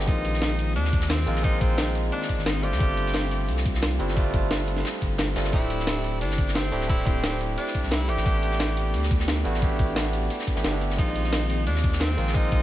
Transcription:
0.06 sub bass A#1, analog synth pad D#3 C4 G#4, tine electric piano D#3 G#3 A#3 C4 F4, tenor saxophone D#4, kick, closed hi-hat
0.25 closed hi-hat
0.34 snare
0.42 snare, closed hi-hat
0.58 closed hi-hat
0.76 sub bass D#2, tenor saxophone D4, closed hi-hat
0.84 snare
0.93 kick, closed hi-hat
1.01 snare
1.09 tenor saxophone C4, snare, closed hi-hat
1.26 sub bass A#1, tine electric piano G#3 A#3 C4 D#4 F4, closed hi-hat
1.35 snare
1.42 tine electric piano G#3 A#3 C4 D#4 F4, tenor saxophone D#4, kick, closed hi-hat
1.61 tenor saxophone C4, kick, closed hi-hat
1.78 snare, closed hi-hat
1.95 closed hi-hat
2.12 tenor saxophone D4, closed hi-hat
2.22 snare
2.29 kick, closed hi-hat
2.38 sub bass G#1, snare
2.46 tenor saxophone D#4, snare, closed hi-hat
2.62 sub bass G1, tine electric piano G3 A3 C4 D4 F4, analog synth pad F4 A4, tenor saxophone G4, closed hi-hat
2.72 sub bass D2, snare
2.78 sub bass G1, tine electric piano G3 A3 C4 D4 F4, kick, closed hi-hat
2.97 closed hi-hat
3.06 snare
3.14 snare, closed hi-hat
3.31 closed hi-hat
3.48 sub bass C2, closed hi-hat
3.57 snare
3.66 kick, closed hi-hat
3.74 snare
3.82 snare, closed hi-hat
3.99 sub bass G1, tine electric piano G3 A3 C4 D4 E4, closed hi-hat
4.08 snare
4.15 tine electric piano G3 A3 C4 D4 F4, kick, closed hi-hat
4.34 kick, closed hi-hat
4.51 snare, closed hi-hat
4.68 closed hi-hat
4.76 snare
4.85 snare, closed hi-hat
5.02 sub bass G1, kick, closed hi-hat
5.18 snare, closed hi-hat
5.35 sub bass G1, tine electric piano G3 A3 C4 D4 F4, snare, closed hi-hat
5.44 snare, closed hi-hat
5.51 sub bass D1, tine electric piano A3 C4 D4 E4 G4, tenor saxophone E4, analog synth pad E4 G4, kick, closed hi-hat, ride
5.70 closed hi-hat
5.79 snare
5.87 snare, closed hi-hat, ride
6.04 closed hi-hat
6.21 sub bass G1, tenor saxophone D4, closed hi-hat, ride
6.31 snare
6.38 kick, closed hi-hat
6.48 snare
6.55 tenor saxophone C4, snare, closed hi-hat, ride
6.71 sub bass D1, tine electric piano A3 C4 D4 E4 G4, closed hi-hat
6.81 snare
6.88 tine electric piano A3 C4 D4 E4 G4, tenor saxophone E4, kick, closed hi-hat, ride
7.06 tenor saxophone C4, kick, closed hi-hat
7.23 snare, closed hi-hat, ride
7.40 closed hi-hat
7.58 tenor saxophone D4, closed hi-hat, ride
7.67 snare
7.74 kick, closed hi-hat
7.83 sub bass C2, snare
7.91 tenor saxophone E4, snare, closed hi-hat, ride
8.08 sub bass A1, tine electric piano A3 C4 D4 E4 G4, tenor saxophone G4, closed hi-hat
8.17 sub bass A1, snare
8.24 sub bass A1, tine electric piano A3 B3 D4 E4 G4, analog synth pad B3 D4, kick, closed hi-hat, ride
8.42 closed hi-hat
8.52 snare
8.60 snare, closed hi-hat, ride
8.77 closed hi-hat
8.94 sub bass D2, closed hi-hat, ride
9.03 snare
9.11 kick, closed hi-hat
9.20 snare
9.28 snare, closed hi-hat, ride
9.44 sub bass A1, tine electric piano A3 B3 D4 E4 F#4, closed hi-hat
9.54 snare
9.60 tine electric piano A3 B3 D4 E4 G4, kick, closed hi-hat, ride
9.79 kick, closed hi-hat
9.96 snare, closed hi-hat, ride
10.13 closed hi-hat
10.30 closed hi-hat, ride
10.39 snare
10.47 kick, closed hi-hat
10.55 sub bass A1, tine electric piano A3 B3 D4 E4 G4, snare
10.64 sub bass G1, snare, closed hi-hat, ride
10.72 tine electric piano A3 B3 D4 E4 A4
10.81 closed hi-hat
10.90 snare
10.97 sub bass A#1, analog synth pad D#3 C4 G#4, tine electric piano D#3 G#3 A#3 C4 F4, tenor saxophone D#4, kick, closed hi-hat, ride
11.15 closed hi-hat
11.24 snare
11.32 snare, closed hi-hat, ride
11.50 closed hi-hat
11.67 sub bass D#2, tenor saxophone D4, closed hi-hat, ride
11.75 snare
11.84 kick, closed hi-hat
11.92 snare
12.00 tenor saxophone C4, snare, closed hi-hat, ride
12.17 sub bass A#1, tine electric piano G#3 A#3 C4 D#4 F4, closed hi-hat
12.27 snare
12.33 tine electric piano G#3 A#3 C4 D#4 F4, tenor saxophone D#4, kick, closed hi-hat, ride
12.52 kick, closed hi-hat

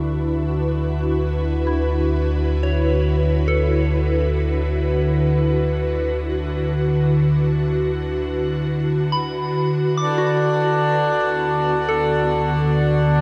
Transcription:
Already playing: analog synth bass D2, ambient pad D3 D4 E4 F#4 B4
1.67 synth bell E4
2.63 synth bell C#5
3.48 synth bell A4
9.12 synth bell B5
9.98 analog synth bass D2, synth bell D6
10.02 harmonium D3 D4
10.18 synth bell F#4
10.45 ambient pad B3
11.89 synth bell A4
12.94 ambient pad F#5

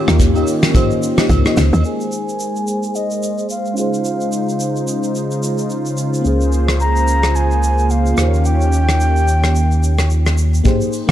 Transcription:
Already playing: analog synth pad D#3 A#3 C#4 F4 G4, fm electric piano A#3 D#4 F4 G4 C#5
0.06 log drum bass D#2, fm electric piano A#3 D#4 F4 G4 A#4, cross-stick, shaker
0.19 kick, hi-hat pedal, shaker
0.34 fm electric piano A#3 D#4 F4 G4 D#5, high agogo, shaker
0.47 open hi-hat, shaker
0.63 cross-stick, snare, shaker
0.73 fm electric piano A#3 D#4 F4 G4 C5, kick, hi-hat pedal, high agogo, shaker
0.91 shaker
1.03 open hi-hat, shaker
1.16 fm electric piano A#3 D#4 F4 G4 D#5, cross-stick, snare, shaker
1.29 log drum bass C#2, kick, hi-hat pedal, high agogo, shaker
1.44 fm electric piano A#3 D#4 F4 G4 D#5, cross-stick, shaker
1.57 log drum bass C#2, snare, open hi-hat, shaker
1.73 log drum bass D#2, high agogo, shaker
1.81 analog synth pad G#3 G#4 C5, fm electric piano A#3 D#4 A#4, shaker
1.85 fm electric piano G#4 C5, flute G#5
2.00 shaker
2.12 shaker
2.29 shaker
2.40 shaker
2.56 shaker
2.67 shaker
2.83 shaker
2.95 flute D#5, shaker
3.11 shaker
3.23 shaker
3.38 shaker
3.50 flute F5, shaker
3.66 shaker
3.74 analog synth pad C#3 D#4 F4, fm electric piano C#4 D#4 F4, shaker
3.78 fm electric piano G#4 C5, flute F5
3.94 shaker
4.05 shaker
4.21 shaker
4.32 shaker
4.49 shaker
4.60 shaker
4.76 shaker
4.88 shaker
5.03 shaker
5.15 shaker
5.31 shaker
5.43 shaker
5.58 shaker
5.70 shaker
5.86 shaker
5.97 shaker
6.14 shaker
6.21 sub bass C#2, fm electric piano A#3 C#4 F4, analog synth pad A#3 G#4 C5, shaker
6.27 fm electric piano G#4 C5
6.41 shaker
6.52 shaker
6.68 cross-stick, shaker
6.80 flute A#5, shaker
6.96 shaker
7.08 shaker
7.23 cross-stick, shaker
7.35 flute G#5, shaker
7.51 shaker
7.63 shaker
7.79 shaker
7.90 flute F5, shaker
8.06 shaker
8.14 sub bass D#2, analog synth pad D#3 C#4 G4, fm electric piano A#3 D#4 F4, cross-stick, shaker
8.19 fm electric piano G4 C5
8.28 fm electric piano C#5
8.34 shaker
8.45 flute G5, shaker
8.61 shaker
8.73 shaker
8.89 cross-stick, shaker
9.00 shaker
9.16 shaker
9.28 shaker
9.43 cross-stick, shaker
9.56 shaker
9.71 shaker
9.83 shaker
9.99 cross-stick, shaker
10.10 shaker
10.26 cross-stick, shaker
10.38 shaker
10.54 shaker
10.64 fm electric piano A#3 D#4 G4 G#4 C5, kick, shaker
10.81 shaker
10.93 open hi-hat, shaker
11.07 fm electric piano A#3 D#4

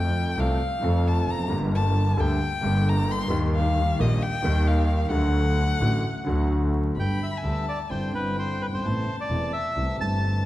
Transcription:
Already playing: double bass F2, grand piano F2 F3 A3 C4 A4, violin G5
0.37 double bass C2, grand piano C2 C3 F3 A3 C4 A4, violin F5
0.79 grand piano F2 F3 A3 C4, double bass F2
0.84 grand piano A4
1.08 violin A5
1.28 double bass F1, violin A#5
1.34 grand piano E2
1.39 grand piano F2
1.44 grand piano F#2 D3
1.49 grand piano G1 G2 G3 A#3 G4, double bass G1
1.75 violin A5
2.17 grand piano D2 D3 G3 A#3 G4, double bass D2, violin G5
2.61 grand piano G1 G2 D3 G3 A#3, double bass G1
2.65 grand piano G4
2.89 violin A#5
3.11 violin C6
3.28 double bass D#2, grand piano D#2 D#3 G3 A#3
3.33 grand piano G4
3.55 violin F5
3.99 double bass A#1, grand piano A#1 A#2 D#3 G3 A#3 G4, violin D#5
4.22 violin G5
4.43 double bass D#2, grand piano D#2 D#3 G3 A#3 G4
4.68 violin F5
5.10 double bass D2, grand piano D2 D3 F#3 A3 F#4, violin F#5
5.79 double bass A1, grand piano A1 A2 D3 F#3 A3 F#4
6.25 grand piano D2 D3 F#3 A3 F#4, double bass D2
6.96 double bass G1, grand piano G1 G2 D3 G3 B3 G4, bandoneon G5, violin B5
7.23 bandoneon E5
7.37 violin G#5
7.43 double bass D2, grand piano D2 D3 G3 B3 G4, violin A5
7.69 bandoneon D5
7.90 grand piano G1 G2 D3 G3 C4 E4, double bass G1, bandoneon C5, violin G5
8.11 grand piano G1 G2 D3 G3 C4, double bass G1, bandoneon B4
8.15 grand piano E4
8.39 bandoneon C5
8.61 double bass G1, bandoneon B4
8.67 grand piano F#1
8.72 grand piano G1, bandoneon C5
8.78 grand piano G#1
8.84 double bass A1, grand piano A1 A2 C3 A3 B3 E4, violin A5
9.21 bandoneon D5
9.29 grand piano E1 E2 C3 A3 B3 E4, double bass E1
9.53 bandoneon E5
9.76 double bass C2, grand piano C2 C3 E3 A3 C4 G4, violin A5
9.97 grand piano G1 G2 E3 A3 C4, double bass G1, bandoneon A5
10.02 grand piano G4

